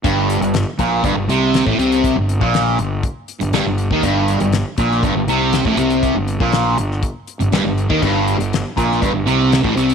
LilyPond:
<<
  \new Staff \with { instrumentName = "Distorted electric guitar" } { \clef bass \time 4/4 \key g \minor \tempo 4 = 120 g,8. g,8 r16 bes,8 g,16 g,16 c8. a,16 c8~ | c16 g,8 bes,8. g,8 r8. g,16 g,16 g,8 ees16 | g,8. g,8 r16 bes,8 g,16 g,16 c8. a,16 c8~ | c16 g,8 bes,8. g,8 r8. g,16 g,16 g,8 ees16 |
g,8. g,8 r16 bes,8 g,16 g,16 c8. a,16 c8 | }
  \new Staff \with { instrumentName = "Fingered electric bass" } { \clef bass \time 4/4 \key g \minor g,,8. g,,8 r16 bes,,8 g,,16 g,,16 c,8. a,,16 c,8~ | c,16 g,,8 bes,,8. g,,8 r8. g,,16 g,,16 g,,8 ees,16 | g,,8. g,,8 r16 bes,,8 g,,16 g,,16 c,8. a,,16 c,8~ | c,16 g,,8 bes,,8. g,,8 r8. g,,16 g,,16 g,,8 ees,16 |
g,,8. g,,8 r16 bes,,8 g,,16 g,,16 c,8. a,,16 c,8 | }
  \new DrumStaff \with { instrumentName = "Drums" } \drummode { \time 4/4 <hh bd>8 hh16 hh16 <hh sn>8 <hh bd>8 <hh bd>8 hh8 <hh sn>16 bd16 hh16 hh16 | <hh bd>8 hh16 bd16 <hh sn>8 hh8 <hh bd>8 hh16 hh16 <hh sn>8 hh16 bd16 | <hh bd>8 hh16 hh16 <hh sn>8 <hh bd>16 sn16 <hh bd>8 hh8 <hh sn>16 bd16 hh16 hh16 | <hh bd>8 hh16 bd16 <hh sn>8 hh16 sn16 <hh bd>8 hh16 hh16 <hh sn>8 hh16 bd16 |
<cymc bd>8 hh16 hh16 <hh sn>8 <hh bd>16 sn16 <hh bd>8 hh8 <hh sn>16 bd16 hh16 hh16 | }
>>